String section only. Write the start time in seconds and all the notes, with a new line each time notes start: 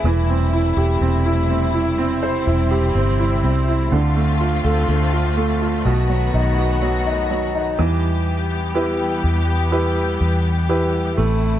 Already playing: E4
0.04 C3 G3 A3
1.98 C4
3.92 D3 A3 C4 F4
5.86 D#3 B3 F#4
7.79 E3 G3 B3 G4
11.18 C3 A3 E4